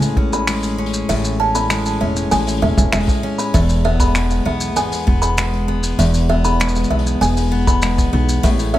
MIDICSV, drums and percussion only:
0, 0, Header, 1, 2, 480
1, 0, Start_track
1, 0, Key_signature, 4, "major"
1, 0, Tempo, 612245
1, 856, Time_signature, 4, 2, 24, 8
1, 6890, End_track
2, 0, Start_track
2, 0, Title_t, "Drums"
2, 14, Note_on_c, 9, 46, 55
2, 17, Note_on_c, 9, 82, 49
2, 92, Note_off_c, 9, 46, 0
2, 95, Note_off_c, 9, 82, 0
2, 131, Note_on_c, 9, 36, 93
2, 210, Note_off_c, 9, 36, 0
2, 257, Note_on_c, 9, 82, 72
2, 336, Note_off_c, 9, 82, 0
2, 372, Note_on_c, 9, 26, 93
2, 373, Note_on_c, 9, 46, 77
2, 373, Note_on_c, 9, 82, 70
2, 451, Note_off_c, 9, 26, 0
2, 451, Note_off_c, 9, 46, 0
2, 452, Note_off_c, 9, 82, 0
2, 492, Note_on_c, 9, 82, 49
2, 499, Note_on_c, 9, 46, 52
2, 571, Note_off_c, 9, 82, 0
2, 577, Note_off_c, 9, 46, 0
2, 674, Note_on_c, 9, 46, 50
2, 733, Note_on_c, 9, 82, 69
2, 752, Note_off_c, 9, 46, 0
2, 812, Note_off_c, 9, 82, 0
2, 854, Note_on_c, 9, 46, 68
2, 859, Note_on_c, 9, 82, 68
2, 932, Note_off_c, 9, 46, 0
2, 938, Note_off_c, 9, 82, 0
2, 976, Note_on_c, 9, 82, 56
2, 1055, Note_off_c, 9, 82, 0
2, 1215, Note_on_c, 9, 46, 45
2, 1216, Note_on_c, 9, 82, 83
2, 1293, Note_off_c, 9, 46, 0
2, 1295, Note_off_c, 9, 82, 0
2, 1334, Note_on_c, 9, 26, 91
2, 1335, Note_on_c, 9, 46, 71
2, 1336, Note_on_c, 9, 82, 73
2, 1412, Note_off_c, 9, 26, 0
2, 1413, Note_off_c, 9, 46, 0
2, 1414, Note_off_c, 9, 82, 0
2, 1455, Note_on_c, 9, 82, 52
2, 1456, Note_on_c, 9, 46, 51
2, 1533, Note_off_c, 9, 82, 0
2, 1535, Note_off_c, 9, 46, 0
2, 1695, Note_on_c, 9, 46, 43
2, 1696, Note_on_c, 9, 82, 82
2, 1773, Note_off_c, 9, 46, 0
2, 1775, Note_off_c, 9, 82, 0
2, 1816, Note_on_c, 9, 82, 67
2, 1818, Note_on_c, 9, 46, 69
2, 1894, Note_off_c, 9, 82, 0
2, 1896, Note_off_c, 9, 46, 0
2, 1933, Note_on_c, 9, 46, 56
2, 1946, Note_on_c, 9, 82, 52
2, 2012, Note_off_c, 9, 46, 0
2, 2014, Note_on_c, 9, 46, 45
2, 2024, Note_off_c, 9, 82, 0
2, 2093, Note_off_c, 9, 46, 0
2, 2093, Note_on_c, 9, 46, 34
2, 2172, Note_off_c, 9, 46, 0
2, 2177, Note_on_c, 9, 36, 108
2, 2180, Note_on_c, 9, 82, 70
2, 2255, Note_off_c, 9, 36, 0
2, 2259, Note_off_c, 9, 82, 0
2, 2293, Note_on_c, 9, 26, 103
2, 2293, Note_on_c, 9, 46, 37
2, 2298, Note_on_c, 9, 82, 64
2, 2315, Note_off_c, 9, 46, 0
2, 2315, Note_on_c, 9, 46, 44
2, 2334, Note_off_c, 9, 46, 0
2, 2334, Note_on_c, 9, 46, 51
2, 2354, Note_off_c, 9, 46, 0
2, 2354, Note_on_c, 9, 46, 53
2, 2372, Note_off_c, 9, 26, 0
2, 2375, Note_off_c, 9, 46, 0
2, 2375, Note_on_c, 9, 46, 58
2, 2377, Note_off_c, 9, 82, 0
2, 2394, Note_off_c, 9, 46, 0
2, 2394, Note_on_c, 9, 46, 67
2, 2415, Note_on_c, 9, 36, 113
2, 2416, Note_off_c, 9, 46, 0
2, 2416, Note_on_c, 9, 46, 46
2, 2422, Note_on_c, 9, 82, 46
2, 2437, Note_off_c, 9, 46, 0
2, 2437, Note_on_c, 9, 46, 39
2, 2457, Note_off_c, 9, 46, 0
2, 2457, Note_on_c, 9, 46, 34
2, 2477, Note_off_c, 9, 46, 0
2, 2477, Note_on_c, 9, 46, 26
2, 2493, Note_off_c, 9, 36, 0
2, 2497, Note_off_c, 9, 46, 0
2, 2497, Note_on_c, 9, 46, 23
2, 2500, Note_off_c, 9, 82, 0
2, 2518, Note_off_c, 9, 46, 0
2, 2518, Note_on_c, 9, 46, 18
2, 2596, Note_off_c, 9, 46, 0
2, 2656, Note_on_c, 9, 46, 45
2, 2658, Note_on_c, 9, 82, 75
2, 2735, Note_off_c, 9, 46, 0
2, 2736, Note_off_c, 9, 82, 0
2, 2778, Note_on_c, 9, 36, 100
2, 2779, Note_on_c, 9, 46, 74
2, 2779, Note_on_c, 9, 82, 68
2, 2857, Note_off_c, 9, 36, 0
2, 2858, Note_off_c, 9, 46, 0
2, 2858, Note_off_c, 9, 82, 0
2, 2892, Note_on_c, 9, 46, 59
2, 2896, Note_on_c, 9, 82, 52
2, 2970, Note_off_c, 9, 46, 0
2, 2975, Note_off_c, 9, 82, 0
2, 3132, Note_on_c, 9, 46, 50
2, 3134, Note_on_c, 9, 36, 105
2, 3136, Note_on_c, 9, 82, 78
2, 3210, Note_off_c, 9, 46, 0
2, 3213, Note_off_c, 9, 36, 0
2, 3214, Note_off_c, 9, 82, 0
2, 3254, Note_on_c, 9, 26, 84
2, 3255, Note_on_c, 9, 82, 70
2, 3257, Note_on_c, 9, 46, 66
2, 3332, Note_off_c, 9, 26, 0
2, 3333, Note_off_c, 9, 82, 0
2, 3335, Note_off_c, 9, 46, 0
2, 3375, Note_on_c, 9, 82, 50
2, 3381, Note_on_c, 9, 46, 51
2, 3453, Note_off_c, 9, 82, 0
2, 3459, Note_off_c, 9, 46, 0
2, 3611, Note_on_c, 9, 82, 81
2, 3619, Note_on_c, 9, 46, 43
2, 3689, Note_off_c, 9, 82, 0
2, 3697, Note_off_c, 9, 46, 0
2, 3734, Note_on_c, 9, 46, 68
2, 3735, Note_on_c, 9, 82, 72
2, 3812, Note_off_c, 9, 46, 0
2, 3813, Note_off_c, 9, 82, 0
2, 3855, Note_on_c, 9, 46, 62
2, 3861, Note_on_c, 9, 82, 48
2, 3934, Note_off_c, 9, 46, 0
2, 3940, Note_off_c, 9, 82, 0
2, 3980, Note_on_c, 9, 36, 106
2, 4059, Note_off_c, 9, 36, 0
2, 4096, Note_on_c, 9, 82, 67
2, 4174, Note_off_c, 9, 82, 0
2, 4216, Note_on_c, 9, 82, 76
2, 4219, Note_on_c, 9, 26, 98
2, 4219, Note_on_c, 9, 46, 81
2, 4294, Note_off_c, 9, 82, 0
2, 4297, Note_off_c, 9, 46, 0
2, 4298, Note_off_c, 9, 26, 0
2, 4337, Note_on_c, 9, 46, 50
2, 4416, Note_off_c, 9, 46, 0
2, 4572, Note_on_c, 9, 82, 77
2, 4575, Note_on_c, 9, 46, 45
2, 4651, Note_off_c, 9, 82, 0
2, 4654, Note_off_c, 9, 46, 0
2, 4696, Note_on_c, 9, 46, 78
2, 4700, Note_on_c, 9, 82, 63
2, 4774, Note_off_c, 9, 46, 0
2, 4779, Note_off_c, 9, 82, 0
2, 4814, Note_on_c, 9, 82, 49
2, 4820, Note_on_c, 9, 46, 54
2, 4893, Note_off_c, 9, 82, 0
2, 4898, Note_off_c, 9, 46, 0
2, 5053, Note_on_c, 9, 46, 48
2, 5054, Note_on_c, 9, 82, 70
2, 5132, Note_off_c, 9, 46, 0
2, 5132, Note_off_c, 9, 82, 0
2, 5176, Note_on_c, 9, 46, 71
2, 5180, Note_on_c, 9, 82, 62
2, 5182, Note_on_c, 9, 26, 102
2, 5241, Note_off_c, 9, 82, 0
2, 5241, Note_on_c, 9, 82, 49
2, 5254, Note_off_c, 9, 46, 0
2, 5260, Note_off_c, 9, 26, 0
2, 5294, Note_off_c, 9, 82, 0
2, 5294, Note_on_c, 9, 82, 44
2, 5301, Note_off_c, 9, 82, 0
2, 5301, Note_on_c, 9, 46, 50
2, 5301, Note_on_c, 9, 82, 40
2, 5361, Note_off_c, 9, 82, 0
2, 5361, Note_on_c, 9, 82, 32
2, 5379, Note_off_c, 9, 46, 0
2, 5440, Note_off_c, 9, 82, 0
2, 5476, Note_on_c, 9, 46, 46
2, 5540, Note_on_c, 9, 82, 78
2, 5555, Note_off_c, 9, 46, 0
2, 5619, Note_off_c, 9, 82, 0
2, 5656, Note_on_c, 9, 46, 68
2, 5662, Note_on_c, 9, 82, 65
2, 5735, Note_off_c, 9, 46, 0
2, 5741, Note_off_c, 9, 82, 0
2, 5775, Note_on_c, 9, 46, 68
2, 5779, Note_on_c, 9, 82, 48
2, 5853, Note_off_c, 9, 46, 0
2, 5857, Note_off_c, 9, 82, 0
2, 6016, Note_on_c, 9, 36, 103
2, 6019, Note_on_c, 9, 82, 69
2, 6094, Note_off_c, 9, 36, 0
2, 6097, Note_off_c, 9, 82, 0
2, 6130, Note_on_c, 9, 82, 68
2, 6135, Note_on_c, 9, 46, 76
2, 6139, Note_on_c, 9, 26, 87
2, 6208, Note_off_c, 9, 82, 0
2, 6214, Note_off_c, 9, 46, 0
2, 6217, Note_off_c, 9, 26, 0
2, 6259, Note_on_c, 9, 36, 94
2, 6259, Note_on_c, 9, 82, 52
2, 6260, Note_on_c, 9, 46, 55
2, 6337, Note_off_c, 9, 82, 0
2, 6338, Note_off_c, 9, 36, 0
2, 6338, Note_off_c, 9, 46, 0
2, 6499, Note_on_c, 9, 82, 76
2, 6501, Note_on_c, 9, 46, 49
2, 6577, Note_off_c, 9, 82, 0
2, 6580, Note_off_c, 9, 46, 0
2, 6615, Note_on_c, 9, 46, 81
2, 6617, Note_on_c, 9, 36, 103
2, 6623, Note_on_c, 9, 82, 65
2, 6693, Note_off_c, 9, 46, 0
2, 6696, Note_off_c, 9, 36, 0
2, 6701, Note_off_c, 9, 82, 0
2, 6736, Note_on_c, 9, 46, 66
2, 6738, Note_on_c, 9, 82, 49
2, 6814, Note_off_c, 9, 46, 0
2, 6816, Note_off_c, 9, 82, 0
2, 6890, End_track
0, 0, End_of_file